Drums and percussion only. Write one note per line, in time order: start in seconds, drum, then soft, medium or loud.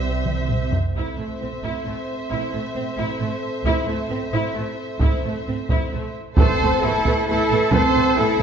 0.26 taiko mid medium
0.49 taiko low-mid medium
0.71 taiko low medium
0.95 taiko soft
1.63 taiko soft
3.64 taiko medium
5.00 taiko medium
5.69 taiko medium
6.37 taiko loud
7.05 taiko medium
7.72 taiko loud
8.39 taiko medium